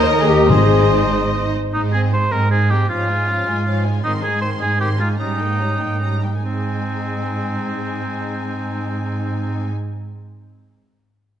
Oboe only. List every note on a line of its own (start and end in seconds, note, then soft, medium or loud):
0.00 1.52 D#5 medium
1.73 1.82 D#4 medium
1.93 2.01 G#4 medium
2.13 2.33 C5 medium
2.32 2.50 A#4 medium
2.51 2.72 G#4 medium
2.70 2.89 G4 medium
2.90 3.83 F4 medium
4.04 4.12 D#4 medium
4.23 4.41 G#4 medium
4.42 4.50 C5 medium
4.61 4.80 G#4 medium
4.81 4.89 G4 medium
5.00 5.09 F4 medium
5.20 6.20 D#4 medium
6.43 9.69 C4 soft